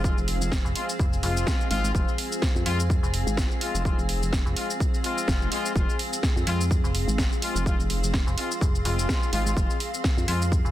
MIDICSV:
0, 0, Header, 1, 7, 480
1, 0, Start_track
1, 0, Key_signature, -4, "minor"
1, 0, Tempo, 476190
1, 42, Time_signature, 4, 2, 24, 8
1, 10797, End_track
2, 0, Start_track
2, 0, Title_t, "Ambient pad"
2, 0, Program_c, 0, 92
2, 0, Note_on_c, 0, 60, 90
2, 0, Note_on_c, 0, 68, 79
2, 0, Note_on_c, 0, 77, 79
2, 0, Note_on_c, 0, 80, 76
2, 6032, Note_on_c, 0, 84, 79
2, 6060, Note_off_c, 0, 80, 0
2, 10797, Note_off_c, 0, 60, 0
2, 10797, Note_off_c, 0, 68, 0
2, 10797, Note_off_c, 0, 77, 0
2, 10797, Note_off_c, 0, 84, 0
2, 10797, End_track
3, 0, Start_track
3, 0, Title_t, "Analog synth pad"
3, 0, Program_c, 1, 89
3, 0, Note_on_c, 1, 65, 78
3, 0, Note_on_c, 1, 68, 72
3, 0, Note_on_c, 1, 72, 91
3, 5787, Note_off_c, 1, 72, 0
3, 5801, Note_on_c, 1, 77, 94
3, 10797, Note_off_c, 1, 65, 0
3, 10797, Note_off_c, 1, 68, 0
3, 10797, Note_off_c, 1, 77, 0
3, 10797, End_track
4, 0, Start_track
4, 0, Title_t, "Horn section"
4, 0, Program_c, 2, 61
4, 43, Note_on_c, 2, 56, 92
4, 43, Note_on_c, 2, 60, 87
4, 43, Note_on_c, 2, 65, 103
4, 180, Note_off_c, 2, 56, 0
4, 180, Note_off_c, 2, 60, 0
4, 180, Note_off_c, 2, 65, 0
4, 762, Note_on_c, 2, 56, 75
4, 762, Note_on_c, 2, 60, 66
4, 762, Note_on_c, 2, 65, 87
4, 899, Note_off_c, 2, 56, 0
4, 899, Note_off_c, 2, 65, 0
4, 900, Note_off_c, 2, 60, 0
4, 1243, Note_on_c, 2, 56, 89
4, 1243, Note_on_c, 2, 60, 82
4, 1243, Note_on_c, 2, 65, 102
4, 1696, Note_off_c, 2, 56, 0
4, 1696, Note_off_c, 2, 60, 0
4, 1696, Note_off_c, 2, 65, 0
4, 1722, Note_on_c, 2, 56, 104
4, 1722, Note_on_c, 2, 60, 94
4, 1722, Note_on_c, 2, 65, 118
4, 1927, Note_off_c, 2, 65, 0
4, 1928, Note_off_c, 2, 56, 0
4, 1928, Note_off_c, 2, 60, 0
4, 1961, Note_on_c, 2, 56, 84
4, 1961, Note_on_c, 2, 60, 73
4, 1962, Note_on_c, 2, 65, 91
4, 2167, Note_off_c, 2, 56, 0
4, 2167, Note_off_c, 2, 60, 0
4, 2167, Note_off_c, 2, 65, 0
4, 2682, Note_on_c, 2, 56, 96
4, 2682, Note_on_c, 2, 60, 86
4, 2682, Note_on_c, 2, 65, 109
4, 2819, Note_off_c, 2, 56, 0
4, 2820, Note_off_c, 2, 60, 0
4, 2820, Note_off_c, 2, 65, 0
4, 3642, Note_on_c, 2, 56, 85
4, 3642, Note_on_c, 2, 60, 82
4, 3642, Note_on_c, 2, 65, 96
4, 3847, Note_off_c, 2, 56, 0
4, 3847, Note_off_c, 2, 60, 0
4, 3847, Note_off_c, 2, 65, 0
4, 3882, Note_on_c, 2, 56, 91
4, 3882, Note_on_c, 2, 60, 81
4, 3882, Note_on_c, 2, 65, 99
4, 4020, Note_off_c, 2, 56, 0
4, 4020, Note_off_c, 2, 60, 0
4, 4020, Note_off_c, 2, 65, 0
4, 4603, Note_on_c, 2, 56, 74
4, 4603, Note_on_c, 2, 60, 69
4, 4603, Note_on_c, 2, 65, 83
4, 4740, Note_off_c, 2, 56, 0
4, 4740, Note_off_c, 2, 60, 0
4, 4740, Note_off_c, 2, 65, 0
4, 5082, Note_on_c, 2, 56, 93
4, 5082, Note_on_c, 2, 60, 80
4, 5082, Note_on_c, 2, 65, 99
4, 5536, Note_off_c, 2, 56, 0
4, 5536, Note_off_c, 2, 60, 0
4, 5536, Note_off_c, 2, 65, 0
4, 5561, Note_on_c, 2, 56, 100
4, 5561, Note_on_c, 2, 60, 94
4, 5561, Note_on_c, 2, 65, 111
4, 5767, Note_off_c, 2, 56, 0
4, 5767, Note_off_c, 2, 60, 0
4, 5767, Note_off_c, 2, 65, 0
4, 5801, Note_on_c, 2, 56, 78
4, 5801, Note_on_c, 2, 60, 72
4, 5801, Note_on_c, 2, 65, 91
4, 6007, Note_off_c, 2, 56, 0
4, 6007, Note_off_c, 2, 60, 0
4, 6007, Note_off_c, 2, 65, 0
4, 6521, Note_on_c, 2, 56, 92
4, 6521, Note_on_c, 2, 65, 105
4, 6522, Note_on_c, 2, 60, 91
4, 6659, Note_off_c, 2, 56, 0
4, 6659, Note_off_c, 2, 60, 0
4, 6659, Note_off_c, 2, 65, 0
4, 7481, Note_on_c, 2, 56, 82
4, 7481, Note_on_c, 2, 60, 81
4, 7482, Note_on_c, 2, 65, 91
4, 7687, Note_off_c, 2, 56, 0
4, 7687, Note_off_c, 2, 60, 0
4, 7687, Note_off_c, 2, 65, 0
4, 7722, Note_on_c, 2, 56, 92
4, 7722, Note_on_c, 2, 60, 84
4, 7722, Note_on_c, 2, 65, 98
4, 7859, Note_off_c, 2, 56, 0
4, 7859, Note_off_c, 2, 60, 0
4, 7859, Note_off_c, 2, 65, 0
4, 8442, Note_on_c, 2, 56, 74
4, 8442, Note_on_c, 2, 60, 69
4, 8442, Note_on_c, 2, 65, 84
4, 8579, Note_off_c, 2, 56, 0
4, 8579, Note_off_c, 2, 60, 0
4, 8579, Note_off_c, 2, 65, 0
4, 8922, Note_on_c, 2, 56, 93
4, 8922, Note_on_c, 2, 60, 82
4, 8922, Note_on_c, 2, 65, 99
4, 9376, Note_off_c, 2, 56, 0
4, 9376, Note_off_c, 2, 60, 0
4, 9376, Note_off_c, 2, 65, 0
4, 9402, Note_on_c, 2, 56, 104
4, 9402, Note_on_c, 2, 60, 92
4, 9402, Note_on_c, 2, 65, 111
4, 9607, Note_off_c, 2, 56, 0
4, 9607, Note_off_c, 2, 60, 0
4, 9607, Note_off_c, 2, 65, 0
4, 9642, Note_on_c, 2, 56, 83
4, 9642, Note_on_c, 2, 60, 74
4, 9642, Note_on_c, 2, 65, 90
4, 9847, Note_off_c, 2, 56, 0
4, 9847, Note_off_c, 2, 60, 0
4, 9847, Note_off_c, 2, 65, 0
4, 10362, Note_on_c, 2, 56, 98
4, 10362, Note_on_c, 2, 60, 89
4, 10362, Note_on_c, 2, 65, 100
4, 10499, Note_off_c, 2, 56, 0
4, 10499, Note_off_c, 2, 60, 0
4, 10499, Note_off_c, 2, 65, 0
4, 10797, End_track
5, 0, Start_track
5, 0, Title_t, "FM bass"
5, 0, Program_c, 3, 39
5, 653, Note_on_c, 3, 29, 97
5, 744, Note_off_c, 3, 29, 0
5, 1002, Note_on_c, 3, 29, 106
5, 1225, Note_off_c, 3, 29, 0
5, 1242, Note_on_c, 3, 29, 102
5, 1465, Note_off_c, 3, 29, 0
5, 2682, Note_on_c, 3, 41, 95
5, 3033, Note_off_c, 3, 41, 0
5, 3055, Note_on_c, 3, 29, 96
5, 3273, Note_off_c, 3, 29, 0
5, 4494, Note_on_c, 3, 29, 99
5, 4585, Note_off_c, 3, 29, 0
5, 6521, Note_on_c, 3, 41, 101
5, 6872, Note_off_c, 3, 41, 0
5, 6893, Note_on_c, 3, 29, 99
5, 7113, Note_off_c, 3, 29, 0
5, 8334, Note_on_c, 3, 29, 98
5, 8425, Note_off_c, 3, 29, 0
5, 8683, Note_on_c, 3, 29, 104
5, 8905, Note_off_c, 3, 29, 0
5, 8922, Note_on_c, 3, 29, 99
5, 9145, Note_off_c, 3, 29, 0
5, 10362, Note_on_c, 3, 41, 100
5, 10713, Note_off_c, 3, 41, 0
5, 10733, Note_on_c, 3, 29, 99
5, 10797, Note_off_c, 3, 29, 0
5, 10797, End_track
6, 0, Start_track
6, 0, Title_t, "Wobble bass"
6, 0, Program_c, 4, 39
6, 0, Note_on_c, 4, 29, 99
6, 153, Note_off_c, 4, 29, 0
6, 172, Note_on_c, 4, 29, 100
6, 632, Note_off_c, 4, 29, 0
6, 1721, Note_on_c, 4, 32, 98
6, 1944, Note_off_c, 4, 32, 0
6, 1962, Note_on_c, 4, 29, 102
6, 2073, Note_off_c, 4, 29, 0
6, 2574, Note_on_c, 4, 41, 98
6, 2665, Note_off_c, 4, 41, 0
6, 3294, Note_on_c, 4, 32, 98
6, 3513, Note_off_c, 4, 32, 0
6, 3774, Note_on_c, 4, 29, 100
6, 3993, Note_off_c, 4, 29, 0
6, 4013, Note_on_c, 4, 29, 99
6, 4473, Note_off_c, 4, 29, 0
6, 5322, Note_on_c, 4, 29, 98
6, 5545, Note_off_c, 4, 29, 0
6, 5802, Note_on_c, 4, 29, 102
6, 5913, Note_off_c, 4, 29, 0
6, 6413, Note_on_c, 4, 41, 97
6, 6504, Note_off_c, 4, 41, 0
6, 7133, Note_on_c, 4, 32, 98
6, 7352, Note_off_c, 4, 32, 0
6, 7613, Note_on_c, 4, 29, 102
6, 7832, Note_off_c, 4, 29, 0
6, 7854, Note_on_c, 4, 29, 101
6, 8313, Note_off_c, 4, 29, 0
6, 9402, Note_on_c, 4, 32, 93
6, 9625, Note_off_c, 4, 32, 0
6, 9642, Note_on_c, 4, 29, 100
6, 9753, Note_off_c, 4, 29, 0
6, 10254, Note_on_c, 4, 41, 100
6, 10345, Note_off_c, 4, 41, 0
6, 10797, End_track
7, 0, Start_track
7, 0, Title_t, "Drums"
7, 42, Note_on_c, 9, 36, 124
7, 49, Note_on_c, 9, 82, 56
7, 143, Note_off_c, 9, 36, 0
7, 150, Note_off_c, 9, 82, 0
7, 180, Note_on_c, 9, 82, 36
7, 281, Note_off_c, 9, 82, 0
7, 281, Note_on_c, 9, 46, 118
7, 381, Note_off_c, 9, 46, 0
7, 421, Note_on_c, 9, 82, 71
7, 521, Note_off_c, 9, 82, 0
7, 521, Note_on_c, 9, 38, 127
7, 522, Note_on_c, 9, 36, 127
7, 529, Note_on_c, 9, 82, 59
7, 622, Note_off_c, 9, 38, 0
7, 623, Note_off_c, 9, 36, 0
7, 630, Note_off_c, 9, 82, 0
7, 661, Note_on_c, 9, 82, 34
7, 761, Note_on_c, 9, 46, 115
7, 762, Note_off_c, 9, 82, 0
7, 862, Note_off_c, 9, 46, 0
7, 901, Note_on_c, 9, 82, 66
7, 1001, Note_off_c, 9, 82, 0
7, 1002, Note_on_c, 9, 36, 120
7, 1009, Note_on_c, 9, 82, 58
7, 1103, Note_off_c, 9, 36, 0
7, 1110, Note_off_c, 9, 82, 0
7, 1140, Note_on_c, 9, 82, 34
7, 1241, Note_off_c, 9, 82, 0
7, 1241, Note_on_c, 9, 46, 112
7, 1341, Note_off_c, 9, 46, 0
7, 1380, Note_on_c, 9, 82, 71
7, 1480, Note_on_c, 9, 38, 127
7, 1481, Note_off_c, 9, 82, 0
7, 1482, Note_on_c, 9, 36, 127
7, 1488, Note_on_c, 9, 82, 60
7, 1580, Note_off_c, 9, 38, 0
7, 1583, Note_off_c, 9, 36, 0
7, 1589, Note_off_c, 9, 82, 0
7, 1620, Note_on_c, 9, 82, 34
7, 1720, Note_on_c, 9, 46, 112
7, 1721, Note_off_c, 9, 82, 0
7, 1821, Note_off_c, 9, 46, 0
7, 1861, Note_on_c, 9, 82, 70
7, 1961, Note_off_c, 9, 82, 0
7, 1962, Note_on_c, 9, 36, 116
7, 1969, Note_on_c, 9, 82, 56
7, 2063, Note_off_c, 9, 36, 0
7, 2069, Note_off_c, 9, 82, 0
7, 2100, Note_on_c, 9, 82, 36
7, 2201, Note_off_c, 9, 82, 0
7, 2201, Note_on_c, 9, 46, 115
7, 2302, Note_off_c, 9, 46, 0
7, 2340, Note_on_c, 9, 82, 67
7, 2440, Note_on_c, 9, 38, 126
7, 2441, Note_off_c, 9, 82, 0
7, 2442, Note_on_c, 9, 36, 127
7, 2448, Note_on_c, 9, 82, 54
7, 2541, Note_off_c, 9, 38, 0
7, 2543, Note_off_c, 9, 36, 0
7, 2549, Note_off_c, 9, 82, 0
7, 2580, Note_on_c, 9, 82, 33
7, 2681, Note_off_c, 9, 82, 0
7, 2681, Note_on_c, 9, 46, 117
7, 2781, Note_off_c, 9, 46, 0
7, 2820, Note_on_c, 9, 82, 66
7, 2921, Note_off_c, 9, 82, 0
7, 2922, Note_on_c, 9, 36, 123
7, 2929, Note_on_c, 9, 82, 56
7, 3023, Note_off_c, 9, 36, 0
7, 3030, Note_off_c, 9, 82, 0
7, 3062, Note_on_c, 9, 82, 33
7, 3161, Note_on_c, 9, 46, 116
7, 3162, Note_off_c, 9, 82, 0
7, 3262, Note_off_c, 9, 46, 0
7, 3301, Note_on_c, 9, 82, 68
7, 3400, Note_on_c, 9, 38, 127
7, 3402, Note_off_c, 9, 82, 0
7, 3402, Note_on_c, 9, 36, 127
7, 3409, Note_on_c, 9, 82, 59
7, 3501, Note_off_c, 9, 38, 0
7, 3503, Note_off_c, 9, 36, 0
7, 3509, Note_off_c, 9, 82, 0
7, 3542, Note_on_c, 9, 82, 33
7, 3641, Note_on_c, 9, 46, 113
7, 3642, Note_off_c, 9, 82, 0
7, 3742, Note_off_c, 9, 46, 0
7, 3781, Note_on_c, 9, 82, 63
7, 3882, Note_off_c, 9, 82, 0
7, 3882, Note_on_c, 9, 36, 123
7, 3889, Note_on_c, 9, 82, 53
7, 3983, Note_off_c, 9, 36, 0
7, 3990, Note_off_c, 9, 82, 0
7, 4021, Note_on_c, 9, 82, 34
7, 4121, Note_on_c, 9, 46, 112
7, 4122, Note_off_c, 9, 82, 0
7, 4222, Note_off_c, 9, 46, 0
7, 4261, Note_on_c, 9, 82, 66
7, 4361, Note_on_c, 9, 38, 117
7, 4362, Note_off_c, 9, 82, 0
7, 4362, Note_on_c, 9, 36, 127
7, 4369, Note_on_c, 9, 82, 55
7, 4462, Note_off_c, 9, 38, 0
7, 4463, Note_off_c, 9, 36, 0
7, 4470, Note_off_c, 9, 82, 0
7, 4501, Note_on_c, 9, 82, 32
7, 4602, Note_off_c, 9, 82, 0
7, 4602, Note_on_c, 9, 46, 110
7, 4702, Note_off_c, 9, 46, 0
7, 4741, Note_on_c, 9, 82, 64
7, 4842, Note_off_c, 9, 82, 0
7, 4842, Note_on_c, 9, 36, 122
7, 4849, Note_on_c, 9, 82, 53
7, 4943, Note_off_c, 9, 36, 0
7, 4950, Note_off_c, 9, 82, 0
7, 4981, Note_on_c, 9, 82, 33
7, 5082, Note_off_c, 9, 82, 0
7, 5082, Note_on_c, 9, 46, 114
7, 5183, Note_off_c, 9, 46, 0
7, 5221, Note_on_c, 9, 82, 66
7, 5321, Note_on_c, 9, 38, 122
7, 5322, Note_off_c, 9, 82, 0
7, 5322, Note_on_c, 9, 36, 124
7, 5329, Note_on_c, 9, 82, 57
7, 5421, Note_off_c, 9, 38, 0
7, 5423, Note_off_c, 9, 36, 0
7, 5430, Note_off_c, 9, 82, 0
7, 5461, Note_on_c, 9, 82, 32
7, 5561, Note_on_c, 9, 46, 114
7, 5562, Note_off_c, 9, 82, 0
7, 5662, Note_off_c, 9, 46, 0
7, 5701, Note_on_c, 9, 82, 64
7, 5802, Note_off_c, 9, 82, 0
7, 5802, Note_on_c, 9, 36, 120
7, 5809, Note_on_c, 9, 82, 55
7, 5902, Note_off_c, 9, 36, 0
7, 5910, Note_off_c, 9, 82, 0
7, 5942, Note_on_c, 9, 82, 34
7, 6041, Note_on_c, 9, 46, 104
7, 6042, Note_off_c, 9, 82, 0
7, 6142, Note_off_c, 9, 46, 0
7, 6181, Note_on_c, 9, 82, 63
7, 6281, Note_on_c, 9, 38, 111
7, 6282, Note_off_c, 9, 82, 0
7, 6282, Note_on_c, 9, 36, 127
7, 6289, Note_on_c, 9, 82, 54
7, 6382, Note_off_c, 9, 36, 0
7, 6382, Note_off_c, 9, 38, 0
7, 6390, Note_off_c, 9, 82, 0
7, 6421, Note_on_c, 9, 82, 31
7, 6521, Note_on_c, 9, 46, 109
7, 6522, Note_off_c, 9, 82, 0
7, 6622, Note_off_c, 9, 46, 0
7, 6661, Note_on_c, 9, 82, 63
7, 6761, Note_on_c, 9, 36, 116
7, 6762, Note_off_c, 9, 82, 0
7, 6769, Note_on_c, 9, 82, 57
7, 6862, Note_off_c, 9, 36, 0
7, 6870, Note_off_c, 9, 82, 0
7, 6902, Note_on_c, 9, 82, 33
7, 7002, Note_off_c, 9, 82, 0
7, 7002, Note_on_c, 9, 46, 112
7, 7102, Note_off_c, 9, 46, 0
7, 7141, Note_on_c, 9, 82, 65
7, 7241, Note_on_c, 9, 38, 123
7, 7242, Note_off_c, 9, 82, 0
7, 7242, Note_on_c, 9, 36, 120
7, 7249, Note_on_c, 9, 82, 57
7, 7342, Note_off_c, 9, 36, 0
7, 7342, Note_off_c, 9, 38, 0
7, 7350, Note_off_c, 9, 82, 0
7, 7382, Note_on_c, 9, 82, 33
7, 7482, Note_off_c, 9, 82, 0
7, 7482, Note_on_c, 9, 46, 103
7, 7583, Note_off_c, 9, 46, 0
7, 7622, Note_on_c, 9, 82, 63
7, 7722, Note_off_c, 9, 82, 0
7, 7722, Note_on_c, 9, 36, 112
7, 7729, Note_on_c, 9, 82, 54
7, 7823, Note_off_c, 9, 36, 0
7, 7830, Note_off_c, 9, 82, 0
7, 7862, Note_on_c, 9, 82, 36
7, 7962, Note_on_c, 9, 46, 103
7, 7963, Note_off_c, 9, 82, 0
7, 8063, Note_off_c, 9, 46, 0
7, 8102, Note_on_c, 9, 82, 70
7, 8201, Note_on_c, 9, 38, 112
7, 8202, Note_off_c, 9, 82, 0
7, 8202, Note_on_c, 9, 36, 118
7, 8209, Note_on_c, 9, 82, 55
7, 8302, Note_off_c, 9, 38, 0
7, 8303, Note_off_c, 9, 36, 0
7, 8310, Note_off_c, 9, 82, 0
7, 8342, Note_on_c, 9, 82, 34
7, 8443, Note_off_c, 9, 82, 0
7, 8443, Note_on_c, 9, 46, 100
7, 8544, Note_off_c, 9, 46, 0
7, 8583, Note_on_c, 9, 82, 66
7, 8682, Note_on_c, 9, 36, 112
7, 8684, Note_off_c, 9, 82, 0
7, 8690, Note_on_c, 9, 82, 55
7, 8783, Note_off_c, 9, 36, 0
7, 8791, Note_off_c, 9, 82, 0
7, 8823, Note_on_c, 9, 82, 34
7, 8923, Note_off_c, 9, 82, 0
7, 8923, Note_on_c, 9, 46, 107
7, 9024, Note_off_c, 9, 46, 0
7, 9063, Note_on_c, 9, 82, 68
7, 9162, Note_on_c, 9, 38, 123
7, 9163, Note_on_c, 9, 36, 118
7, 9164, Note_off_c, 9, 82, 0
7, 9171, Note_on_c, 9, 82, 58
7, 9263, Note_off_c, 9, 36, 0
7, 9263, Note_off_c, 9, 38, 0
7, 9271, Note_off_c, 9, 82, 0
7, 9303, Note_on_c, 9, 82, 33
7, 9402, Note_on_c, 9, 46, 106
7, 9404, Note_off_c, 9, 82, 0
7, 9503, Note_off_c, 9, 46, 0
7, 9542, Note_on_c, 9, 82, 68
7, 9642, Note_on_c, 9, 36, 110
7, 9643, Note_off_c, 9, 82, 0
7, 9650, Note_on_c, 9, 82, 58
7, 9743, Note_off_c, 9, 36, 0
7, 9750, Note_off_c, 9, 82, 0
7, 9781, Note_on_c, 9, 82, 37
7, 9881, Note_on_c, 9, 46, 105
7, 9882, Note_off_c, 9, 82, 0
7, 9982, Note_off_c, 9, 46, 0
7, 10021, Note_on_c, 9, 82, 70
7, 10121, Note_off_c, 9, 82, 0
7, 10121, Note_on_c, 9, 38, 111
7, 10123, Note_on_c, 9, 36, 125
7, 10129, Note_on_c, 9, 82, 59
7, 10222, Note_off_c, 9, 38, 0
7, 10223, Note_off_c, 9, 36, 0
7, 10230, Note_off_c, 9, 82, 0
7, 10261, Note_on_c, 9, 82, 35
7, 10362, Note_off_c, 9, 82, 0
7, 10362, Note_on_c, 9, 46, 107
7, 10463, Note_off_c, 9, 46, 0
7, 10502, Note_on_c, 9, 82, 71
7, 10602, Note_on_c, 9, 36, 116
7, 10603, Note_off_c, 9, 82, 0
7, 10609, Note_on_c, 9, 82, 58
7, 10703, Note_off_c, 9, 36, 0
7, 10710, Note_off_c, 9, 82, 0
7, 10741, Note_on_c, 9, 82, 34
7, 10797, Note_off_c, 9, 82, 0
7, 10797, End_track
0, 0, End_of_file